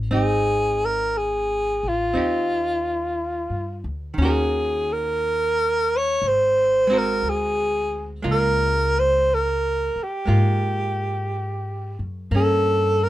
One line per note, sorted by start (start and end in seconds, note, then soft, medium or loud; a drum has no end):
0.00 0.11 D#3 soft
0.00 0.11 C#4 soft
0.00 0.12 G4 soft
0.11 1.79 G#1 medium
0.11 2.12 C4 soft
0.11 2.14 D#4 soft
0.11 0.87 G#4 medium
0.85 1.19 A#4 medium
1.17 1.90 G#4 medium
1.83 2.13 A1 medium
1.88 3.88 F4 medium
2.14 3.46 D#2 medium
2.14 4.17 C4 soft
2.14 4.18 D#4 soft
2.14 4.19 G4 soft
3.50 3.81 G2 soft
3.84 4.15 D2 medium
4.14 6.17 D#2 medium
4.14 6.19 D#3 soft
4.18 6.21 C#4 soft
4.18 6.23 F#4 medium
4.18 4.94 G#4 medium
4.25 6.24 A#4 soft
4.92 5.98 A#4 medium
5.97 6.29 C#5 medium
6.22 7.19 G#1 medium
6.28 6.99 C5 medium
6.87 8.21 G#3 soft
6.87 8.23 C4 soft
6.92 8.24 F#4 soft
6.92 8.25 A#4 medium
6.98 7.31 A#4 medium
7.23 8.20 D2 medium
7.29 8.11 G#4 medium
8.22 9.92 C#2 medium
8.22 10.24 G#3 soft
8.22 10.26 A#3 soft
8.22 10.27 F4 soft
8.31 9.01 A#4 medium
8.99 9.36 C5 medium
9.34 10.04 A#4 medium
9.96 muted upright bass stroke soft
10.03 12.03 G4 medium
10.26 11.95 G#2 medium
10.26 12.30 G#3 soft
10.26 12.30 A#3 soft
10.26 12.32 F4 soft
11.99 12.29 F#2 medium
12.31 13.09 G2 medium
12.31 13.09 A#3 soft
12.31 13.09 C#4 soft
12.36 13.05 A4 medium
13.04 13.09 A#4 medium